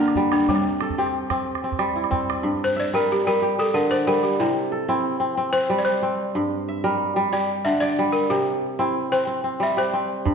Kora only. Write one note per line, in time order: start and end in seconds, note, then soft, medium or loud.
0.00 0.54 G2 medium
0.00 0.54 D3 medium
0.00 0.98 G4 medium
0.00 0.88 A#4 medium
0.00 0.12 D5 medium
0.16 0.54 G3 medium
0.49 2.50 C3 medium
0.82 2.14 A4 medium
0.98 1.30 C4 medium
0.98 2.40 G4 medium
1.31 1.63 C4 medium
1.64 2.10 C4 medium
1.79 2.50 G3 medium
1.96 3.52 E4 medium
2.11 3.91 C4 medium
2.43 4.45 G2 medium
2.76 3.80 E5 medium
2.93 3.25 G3 medium
2.93 4.21 A#4 medium
3.27 3.80 G3 medium
3.42 3.58 G4 medium
3.58 5.00 G4 medium
3.74 4.45 D3 medium
3.91 5.02 D5 medium
4.07 4.45 G3 medium
4.40 6.40 C3 medium
4.72 6.04 A4 medium
4.89 5.19 C4 medium
4.89 6.45 E4 medium
5.20 5.37 C4 medium
5.37 5.53 C4 medium
5.53 6.02 C4 medium
5.69 6.40 G3 medium
6.03 7.83 C4 medium
6.35 8.35 G2 medium
6.68 7.72 E5 medium
6.84 7.15 G3 medium
6.84 8.11 A#4 medium
7.16 7.70 G3 medium
7.33 8.74 G4 medium
7.65 8.35 D3 medium
7.82 8.93 D5 medium
7.99 8.35 G3 medium
8.30 10.30 C3 medium
8.79 9.11 C4 medium
8.79 10.34 E4 medium
9.12 9.27 C4 medium
9.27 9.43 C4 medium
9.44 9.93 C4 medium
9.60 10.30 G3 medium
9.77 10.34 G4 medium
9.93 10.34 C4 medium
10.25 10.34 G2 medium